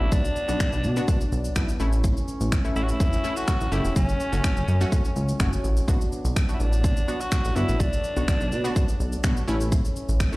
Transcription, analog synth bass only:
0.01 0.09 A1 medium
0.12 0.29 B1 loud
0.49 0.57 B1 medium
0.73 0.86 B1 medium
0.84 1.01 B2 loud
1.32 1.49 B1 medium
1.56 1.73 B1 loud
1.80 2.14 A1 loud
2.41 2.58 A1 medium
2.76 2.93 A1 medium
3.00 3.17 E1 loud
3.61 3.69 A1 medium
3.72 3.81 F#1 loud
3.85 3.93 E1 medium
3.96 4.13 F#1 loud
4.33 4.41 F#1 loud
4.57 4.65 F#1 loud
4.68 4.85 F#2 loud
5.16 5.33 C#2 medium
5.40 5.57 F#1 medium
5.64 5.81 A1 medium
5.88 6.05 B1 loud
6.25 6.42 B1 medium
6.60 6.86 A1 medium
6.84 7.01 B1 loud
7.45 7.53 A1 loud
7.56 7.65 G1 medium
7.69 7.77 A1 loud
7.80 7.97 B1 loud
8.17 8.25 B1 loud
8.41 8.54 B1 medium
8.52 8.69 B2 loud
9.00 9.17 B1 medium
9.24 9.41 B1 medium
9.48 9.82 A1 loud
10.09 10.26 A1 medium

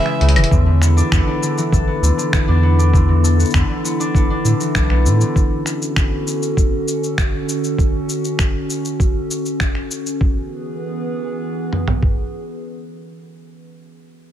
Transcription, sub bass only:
0.21 0.38 C#2 loud
0.36 0.45 E1 loud
0.51 1.02 E2 loud
1.12 1.21 E2 medium
1.72 1.81 B1 medium
2.02 2.11 D2 medium
2.48 3.44 E2 medium
3.54 3.63 E2 medium
4.45 4.54 A2 medium
4.75 5.07 B1 medium
5.05 5.24 A2 loud

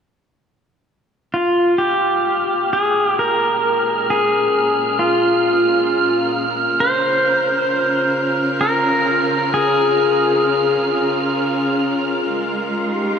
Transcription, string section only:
1.35 6.81 A#2 medium
2.06 6.81 G#3 medium
2.81 12.30 C#4 medium
3.08 13.19 A#4 medium
6.81 12.30 C#3 medium
7.60 13.19 F4 medium
12.29 13.19 G#3 medium
12.85 13.19 D#4 medium
12.93 13.19 G4 medium

